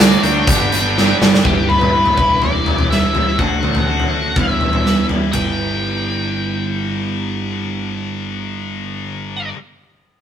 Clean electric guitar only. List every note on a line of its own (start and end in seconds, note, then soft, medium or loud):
1.44 1.91 G3 medium
1.44 1.71 D4 medium
1.44 1.69 E4 medium
1.44 1.67 B4 medium
1.68 1.93 D4 medium
1.68 1.93 E4 medium
1.68 1.94 B4 medium
1.92 2.15 G3 medium
1.92 2.19 D4 medium
1.92 2.16 E4 medium
1.92 2.15 B4 medium
2.17 2.88 E3 medium
2.17 2.89 G3 medium
2.17 2.91 D4 medium
2.17 2.91 E4 medium
2.17 2.92 B4 medium
2.89 3.37 E3 medium
2.89 3.37 G3 loud
2.89 3.16 D4 loud
2.89 3.14 E4 loud
2.89 3.12 B4 loud
3.13 3.39 D4 soft
3.13 3.38 E4 medium
3.13 3.37 B4 medium
3.38 3.87 D3 medium
3.38 3.86 A3 medium
3.38 3.64 D4 loud
3.38 3.63 F#4 medium
3.38 3.62 A4 medium
3.63 3.87 D4 medium
3.63 3.88 F#4 medium
3.63 3.89 A4 medium
3.87 4.34 A3 medium
3.87 4.13 D4 medium
3.87 4.12 F#4 medium
3.87 4.10 A4 medium
4.11 4.36 D4 medium
4.11 4.35 F#4 medium
4.11 4.34 A4 medium
4.36 4.83 E3 medium
4.36 4.84 G3 medium
4.36 4.84 D4 medium
4.36 4.85 E4 medium
4.36 4.86 B4 medium
4.84 5.32 E3 medium
4.84 5.31 G3 medium
4.84 5.10 D4 medium
4.84 5.09 E4 medium
4.84 5.07 B4 medium
5.08 5.33 D4 soft
5.08 5.33 E4 medium
5.08 5.32 B4 medium
5.32 9.53 G3 medium
5.32 9.54 B3 medium
5.32 9.55 E4 medium
5.32 9.56 B4 medium
5.36 9.57 D5 medium